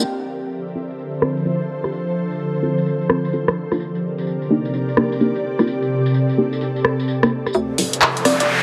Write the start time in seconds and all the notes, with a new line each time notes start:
0.05 D3 F3 A4 C5 E5
0.20 tambourine
0.43 tambourine
0.52 tambourine
0.67 tambourine
0.75 C4 E4 F4 A4
0.90 tambourine
0.99 tambourine
1.14 tambourine
1.22 C4 E4 F4 A4, cross-stick
1.37 tambourine
1.45 C4 E4 F4 A4, tambourine
1.61 tambourine
1.84 C4 E4 F4 G4, cross-stick, tambourine
1.92 tambourine
2.08 tambourine
2.31 tambourine
2.39 tambourine
2.54 tambourine
2.63 C4 E4 F4 A4
2.78 tambourine
2.86 tambourine
3.01 tambourine
3.10 C4 E4 F4 A4, cross-stick
3.25 tambourine
3.33 C4 E4 F4 A4, tambourine
3.48 cross-stick, tambourine
3.57 C3 C4 G4 A#4 D5
3.72 A#3 D4 D#4 F4, cross-stick, tambourine
3.80 tambourine
3.95 tambourine
4.18 tambourine
4.27 tambourine
4.42 tambourine
4.50 A#3 D4 D#4 G4
4.65 tambourine
4.74 tambourine
4.89 tambourine
4.97 A#3 D4 D#4 G4, cross-stick
5.12 tambourine
5.21 A#3 D4 D#4 G4, tambourine
5.36 tambourine
5.44 A4
5.59 A#3 D4 D#4 F4, cross-stick, tambourine
5.67 tambourine
5.82 tambourine
6.06 tambourine
6.14 tambourine
6.29 tambourine
6.38 A#3 D4 D#4 G4
6.53 tambourine
6.61 tambourine
6.76 tambourine
6.85 cross-stick
7.00 tambourine
7.08 tambourine
7.23 A#3 D4 D#4 G4, cross-stick, tambourine
7.46 cross-stick, tambourine
7.55 D2 F3 A4 C5 E5, riser
7.78 D1, open hi-hat
7.93 closed hi-hat
8.02 clap
8.17 closed hi-hat
8.25 C4 E4 F4 A4 D5, cross-stick, open hi-hat
8.40 D5, closed hi-hat